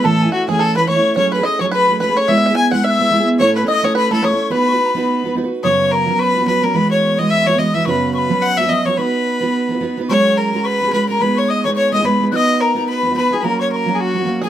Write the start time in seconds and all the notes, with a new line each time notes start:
0.04 A2 E3 A3 C#4 E4 A4 A5
0.22 E4 G#5
0.27 A3 C#4
0.32 F#4 F#5
0.48 E3 A3 C#4 E4 G#4 G#5
0.59 A4 A5
0.76 E3 A3 C#4 E4 B4 B5
0.88 E3 A3 C#4 E4 C#5 C#6
0.96 A3 C#4 E4
1.16 F#3 A3 C#4 G#4 C#5 C#6
1.32 B4 B5
1.38 A3 C#4 G#4
1.43 D#5 D#6
1.59 F#3 A3 C#4 C#5 C#6
1.64 G#4
1.71 B4 B5
1.88 F#3 A3 C#4 G#4
2.00 F#3 A3 C#4 G#4 B4 B5
2.09 A3 C#4 G#4
2.17 C#5 C#6
2.28 G#3 B3 E4 G#4 E5 E6
2.38 E5
2.46 E5
2.50 B3 E4 G#4
2.55 G#5 G#6
2.71 G#3 B3 E4 F#5 F#6
2.75 G#4
2.84 E5 F#6
2.91 E6
2.99 G#3 B3 E4 G#4
3.11 G#3 B3 E4 G#4
3.20 B3 E4 G#4
3.39 A2 A3 C#4 E4 A4 C#5 C#6
3.55 B4
3.61 C#4 E4 A4
3.68 D#5 D#6
3.83 A3 C#4 E4 A4 C#5
3.95 B4 B5
4.11 A3 C#4 E4 A4
4.22 A3 C#4 E4 A4 C#5 D#6
4.28 E4 A4 C#6
4.33 C#4
4.50 B3 D#4 F#4 B4 B5
4.68 C#6
4.73 F#4 B4 B5
4.85 A#5
4.90 B5
4.95 B3 D#4 F#4 B4
5.24 B3 D#4 F#4 B4
5.35 B3 D#4 F#4 B4
5.44 D#4 F#4 B4
5.63 F#2 C#3 F#3 B3 C#4 F#4 C#5 D#6
5.68 C#6
5.91 A#4 C#6
5.95 A#5
6.07 F#3 B3 C#4 F#4
6.19 B4 C#6
6.23 B5
6.34 F#3 B3 C#4 F#4
6.41 F#3 B3 C#4 F#4
6.46 F#3 B3 C#4 F#4 B4 B5
6.62 F#3 B3 C#4 F#4 A#4 A#5
6.74 E3 G#3 B3 F#4 B4 B5
6.90 C#5 C#6
7.18 E3 G#3 B3 F#4 D#5 D#6
7.30 E5 E6
7.46 E3 G#3 B3 F#4 C#5 C#6
7.51 G#3 B3 F#4
7.58 E3 G#3 B3 F#4 D#5 D#6
7.74 E3 G#3 B3 F#4 E5 E6
7.86 F#2 C#3 F#3 B3 C#4 F#4 B4 C#6
7.91 B5
8.14 B4 C#6
8.18 B5
8.29 F#3 B3 C#4 F#4
8.41 F#5 F#6
8.57 F#3 B3 C#4 F#4 E5 E6
8.63 F#3 B3 C#4 F#4
8.69 F#3 B3 C#4 D#5 D#6
8.73 F#4
8.85 F#3 B3 C#4 F#4 C#5 C#6
8.97 B3 D#4 F#4 B4 C#6
9.02 B5
9.41 B3 D#4 F#4 B4
9.69 B3 D#4 F#4 B4
9.74 D#4 F#4 B4
9.81 B3 D#4 F#4 B4
9.98 B3 D#4 F#4 B4
10.09 F#3 G#3 C#4 F#4 G#4 C#5 C#6
10.37 A#4 A#5
10.53 G#3 C#4 F#4 G#4 A#5
10.64 B4 B5 C#6
10.81 G#3 C#4 F#4 G#4
10.87 C#4 F#4 G#4
10.92 G#3 C#4 F#4 G#4 B4 B5
11.09 G#3 C#4 F#4 G#4 A#4 A#5
11.20 G#3 B3 D#4 G#4 B4 B5
11.36 C#5 C#6
11.49 D#5 D#6
11.64 G#3 B3 D#4 G#4 C#5 C#6
11.76 C#5 C#6
11.92 G#3 B3 D#4 G#4 D#5 D#6
11.99 B3 D#4 G#4
12.04 G#3 B3 D#4 G#4 B4 B5
12.20 G#3 B3 D#4 G#4
12.32 B3 D#4 F#4 B4 D#5 F#6
12.36 D#6
12.60 A#4 A#5
12.75 B3 D#4 F#4 B4 A#5
12.87 B4 B5
13.03 B3 D#4 F#4 B4
13.09 D#4 F#4 B4
13.15 B3 D#4 F#4 B4 B5
13.31 B3 D#4 F#4 G#4 B4 G#5
13.40 F#3 A#3 A#4 B4 A#5
13.45 C#4 F#4
13.59 C#5 C#6
13.71 A#4 C#6
13.76 A#5
13.86 F#3 A#3 C#4 F#4
13.94 G#4 G#5
14.00 F#4 F#5 G#5
14.14 F#3 A#3 C#4 F#4
14.20 A#3 C#4 F#4
14.25 F#3 A#3 C#4 F#4
14.41 F#3 A#3 C#4 F#4 G#4 G#5